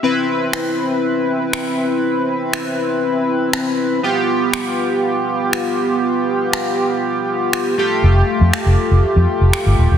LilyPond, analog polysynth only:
\new Staff \with { instrumentName = "Analog polysynth" } { \time 4/4 \key c \major \tempo 4 = 120 <c' e' b'>1~ | <c' e' b'>1 | <b f' g'>1~ | <b f' g'>2.~ <b f' g'>8 <a f' g'>8~ |
<a f' g'>1 | }